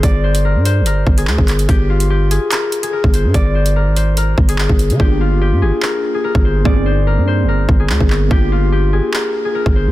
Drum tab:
HH |x--x--x-x--x--xx|x--x--x-x-xx--x-|x--x--x-x--x--xx|----------------|
CP |------------x-x-|--------x-------|------------x---|--------x-------|
BD |o---------o--o--|o------------o--|o---------o--o--|o------------o--|

HH |----------------|----------------|
CP |------------x-x-|--------x-------|
BD |o---------o--o--|o------------o--|